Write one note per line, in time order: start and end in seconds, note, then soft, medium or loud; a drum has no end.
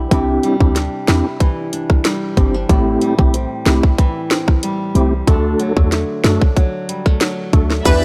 0.00 0.79 E3 medium
0.00 0.43 G3 medium
0.00 0.76 D4 medium
0.00 0.11 E4 medium
0.00 0.18 B4 medium
0.11 0.39 C2 loud
0.11 2.69 C3 medium
0.11 0.57 C4 medium
0.11 0.57 D4 medium
0.11 0.57 E4 medium
0.11 1.08 E4 medium
0.11 0.57 G4 loud
0.11 kick loud
0.11 closed hi-hat medium
0.43 2.04 G3 medium
0.43 closed hi-hat soft
0.60 0.89 D2 medium
0.60 0.78 C4 medium
0.60 0.78 D4 medium
0.60 0.78 E4 medium
0.60 0.78 G4 medium
0.60 kick medium
0.76 1.72 D4 medium
0.76 snare medium
0.76 closed hi-hat medium
1.08 1.23 E2 loud
1.08 1.27 C4 medium
1.08 1.27 D4 medium
1.08 1.27 E4 medium
1.08 2.70 E4 medium
1.08 1.27 G4 medium
1.08 snare loud
1.08 closed hi-hat soft
1.40 3.98 E3 medium
1.40 kick medium
1.40 closed hi-hat medium
1.73 2.37 D4 medium
1.73 closed hi-hat medium
1.90 kick loud
1.90 cross-stick medium
2.05 3.01 G3 medium
2.05 snare loud
2.05 closed hi-hat medium
2.37 2.65 G1 medium
2.37 2.56 C4 medium
2.37 2.54 C4 medium
2.37 2.56 D4 medium
2.37 2.56 E4 medium
2.37 2.56 G4 medium
2.37 kick medium
2.37 closed hi-hat medium
2.54 2.76 D4 medium
2.69 2.97 A1 loud
2.69 5.27 A2 medium
2.69 3.14 A3 medium
2.69 3.15 C4 medium
2.69 3.15 E4 medium
2.69 3.65 E4 medium
2.69 3.15 G4 loud
2.69 kick loud
2.69 closed hi-hat medium
3.01 4.62 G3 medium
3.01 closed hi-hat soft
3.18 3.47 B1 medium
3.18 3.36 A3 medium
3.18 3.36 C4 medium
3.18 3.36 E4 medium
3.18 3.36 G4 medium
3.18 kick loud
3.34 4.30 C4 medium
3.34 closed hi-hat medium
3.66 3.81 C2 medium
3.66 3.85 A3 medium
3.66 3.85 C4 medium
3.66 3.85 E4 medium
3.66 5.28 E4 medium
3.66 3.85 G4 medium
3.66 snare loud
3.66 closed hi-hat soft
3.83 kick medium
3.98 5.27 E3 medium
3.98 kick medium
3.98 closed hi-hat medium
4.31 4.94 C4 medium
4.31 snare loud
4.31 closed hi-hat medium
4.48 kick loud
4.48 cross-stick medium
4.63 5.34 G3 medium
4.63 closed hi-hat medium
4.95 5.23 C2 medium
4.95 5.14 A3 medium
4.95 5.14 C4 medium
4.95 5.34 C4 medium
4.95 5.14 E4 medium
4.95 5.14 G4 medium
4.95 closed hi-hat medium
5.27 5.55 D2 loud
5.27 7.85 D3 medium
5.27 5.73 A3 medium
5.27 5.73 D4 medium
5.27 6.24 D4 medium
5.27 5.73 F#4 medium
5.27 5.73 A4 loud
5.27 kick loud
5.27 closed hi-hat medium
5.60 6.55 F#3 medium
5.60 closed hi-hat soft
5.77 6.05 E2 medium
5.77 5.94 A3 medium
5.77 5.94 D4 medium
5.77 5.94 F#4 medium
5.77 5.94 A4 medium
5.77 kick medium
5.92 6.88 A3 medium
5.92 snare medium
5.92 closed hi-hat medium
6.24 6.39 F#2 loud
6.24 6.43 A3 medium
6.24 6.43 D4 medium
6.24 8.05 D4 medium
6.24 6.43 F#4 medium
6.24 6.43 A4 medium
6.24 snare loud
6.24 closed hi-hat soft
6.42 kick medium
6.57 7.20 F#3 medium
6.57 kick medium
6.57 closed hi-hat medium
6.89 7.06 G3 medium
6.89 closed hi-hat medium
7.06 7.52 A3 medium
7.06 kick loud
7.06 cross-stick medium
7.21 7.92 F#3 medium
7.21 snare loud
7.21 closed hi-hat medium
7.53 7.81 D2 loud
7.53 7.72 A3 medium
7.53 7.92 A3 medium
7.53 7.72 D4 medium
7.53 7.72 F#4 medium
7.53 7.72 A4 medium
7.53 kick medium
7.53 closed hi-hat medium
7.70 snare medium
7.85 8.05 E2 loud
7.85 8.05 E3 medium
7.85 8.05 B3 medium
7.85 8.05 D4 medium
7.85 8.05 E4 medium
7.85 8.05 G4 medium
7.85 8.05 G4 loud
7.85 7.98 B4 loud
7.85 8.05 D5 medium
7.85 8.05 E5 medium
7.85 8.05 B5 medium
7.85 kick loud
7.85 closed hi-hat medium
7.85 crash loud
7.85 maracas medium